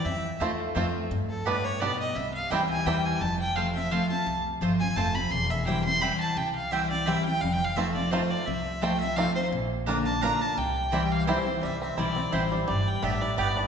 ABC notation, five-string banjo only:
X:1
M:3/4
L:1/8
Q:"Swing" 1/4=171
K:C
V:1 name="Five-string banjo"
z2 [A,CF] z [A,CF] z | z2 [G,B,D] z [G,B,D] z | z2 [G,CE] z [G,CE] z | z6 |
z6 | z6 | z6 | z2 [A,CF] z [A,CF] z |
z2 [A,CF] z [A,CF] z | z2 [_B,D] z [B,D] z | z2 [G,CE] z [G,CE] z | G, C E C E G, |
G,2 D G, B, D |]